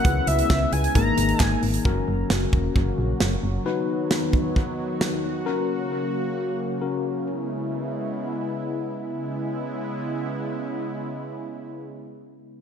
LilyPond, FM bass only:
\new Staff \with { instrumentName = "FM bass" } { \clef bass \time 4/4 \key cis \dorian \tempo 4 = 133 cis,8 cis,8 cis,8 cis,8 gis,,8 gis,,8 gis,,8 gis,,8 | fis,,8 fis,,8 fis,,8 e,,8 fis,,8 ais,,8 fis,,8 fis,,8 | r1 | r1 |
r1 | r1 | r1 | }